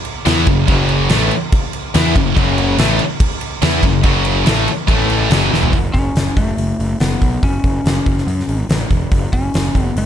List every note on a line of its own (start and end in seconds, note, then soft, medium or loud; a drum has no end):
0.05 crash medium
0.25 0.46 E2 loud
0.25 0.46 E3 medium
0.25 0.46 B3 medium
0.25 0.47 E4 medium
0.25 snare loud
0.25 crash medium
0.46 0.66 F#1 medium
0.46 0.64 F#2 medium
0.46 0.64 C#3 medium
0.46 kick loud
0.46 crash medium
0.67 1.07 F#1 loud
0.67 1.09 F#2 medium
0.67 1.09 C#3 loud
0.67 1.10 F#3 loud
0.67 kick loud
0.67 crash medium
0.89 crash medium
1.09 1.30 A1 medium
1.09 1.30 A2 medium
1.09 1.31 E3 loud
1.09 1.31 A3 loud
1.09 snare loud
1.09 crash medium
1.31 crash medium
1.52 kick loud
1.52 crash medium
1.73 crash medium
1.94 2.14 E2 loud
1.94 2.15 E3 loud
1.94 2.15 B3 medium
1.94 2.15 E4 loud
1.94 snare loud
1.94 crash medium
2.15 2.35 F#1 medium
2.15 2.32 F#2 medium
2.15 2.32 C#3 medium
2.15 kick medium
2.15 crash medium
2.36 2.76 F#1 loud
2.36 2.78 F#2 loud
2.36 2.78 C#3 loud
2.36 2.78 F#3 loud
2.36 kick loud
2.36 crash medium
2.58 crash medium
2.78 2.98 A1 medium
2.78 2.99 A2 loud
2.78 3.00 E3 loud
2.78 3.00 A3 loud
2.78 snare loud
2.78 crash medium
2.99 crash medium
3.20 kick loud
3.20 crash medium
3.41 crash medium
3.62 3.82 E2 loud
3.62 3.83 E3 medium
3.62 3.83 B3 medium
3.62 3.83 E4 loud
3.62 snare loud
3.62 crash medium
3.83 4.03 F#1 medium
3.83 4.00 F#2 medium
3.83 4.00 C#3 medium
3.83 kick medium
3.83 crash medium
4.03 4.44 F#1 loud
4.03 4.46 F#2 loud
4.03 4.45 C#3 loud
4.03 4.46 F#3 loud
4.03 kick loud
4.03 crash medium
4.25 crash medium
4.45 4.66 A1 medium
4.45 4.67 A2 medium
4.45 4.67 E3 loud
4.45 4.67 A3 loud
4.45 snare loud
4.45 crash medium
4.68 crash medium
4.88 5.28 A1 loud
4.88 5.30 A2 medium
4.88 5.30 E3 medium
4.88 5.31 A3 loud
4.88 kick loud
4.88 crash medium
5.10 crash medium
5.30 5.50 F#1 loud
5.30 5.51 F#2 loud
5.30 5.51 C#3 medium
5.30 5.51 F#3 loud
5.30 snare loud
5.30 crash medium
5.51 5.72 E1 loud
5.51 5.72 E2 medium
5.51 5.73 B2 loud
5.51 5.73 E3 loud
5.51 snare medium
5.63 floor tom medium
5.73 5.88 F#1 medium
5.73 kick loud
5.73 open hi-hat medium
5.94 6.09 F#1 medium
5.94 6.38 C#4 medium
5.94 kick medium
5.94 open hi-hat soft
6.15 6.30 F#1 medium
6.15 snare loud
6.15 open hi-hat medium
6.37 6.51 F#1 medium
6.37 6.97 A3 medium
6.37 kick medium
6.37 open hi-hat soft
6.57 6.72 F#1 medium
6.57 open hi-hat medium
6.79 6.94 F#1 medium
6.79 open hi-hat soft
7.00 7.15 F#1 medium
7.00 7.44 B3 medium
7.00 snare medium
7.00 open hi-hat medium
7.22 7.36 B1 medium
7.22 kick medium
7.22 open hi-hat soft
7.43 7.57 F#1 medium
7.43 8.66 C#4 medium
7.43 kick medium
7.43 open hi-hat medium
7.64 7.78 F#1 medium
7.64 kick medium
7.64 open hi-hat soft
7.84 7.99 F#1 medium
7.84 snare loud
7.84 open hi-hat medium
8.06 8.21 F#1 medium
8.06 kick medium
8.06 open hi-hat soft
8.18 snare soft
8.27 8.41 F#2 medium
8.27 open hi-hat medium
8.40 snare soft
8.48 8.62 G#1 medium
8.48 open hi-hat soft
8.69 8.84 A1 medium
8.69 snare loud
8.69 open hi-hat medium
8.90 9.05 E1 medium
8.90 kick medium
8.90 open hi-hat soft
9.12 9.26 F#1 medium
9.12 kick medium
9.12 open hi-hat medium
9.33 9.47 F#1 medium
9.33 9.82 C#4 medium
9.33 kick medium
9.33 open hi-hat soft
9.54 9.68 F#1 medium
9.54 snare loud
9.54 open hi-hat medium
9.75 9.89 F#1 medium
9.75 kick medium
9.75 open hi-hat soft
9.82 9.98 B3 medium
9.96 10.06 F#1 medium
9.96 10.06 A3 medium
9.96 open hi-hat medium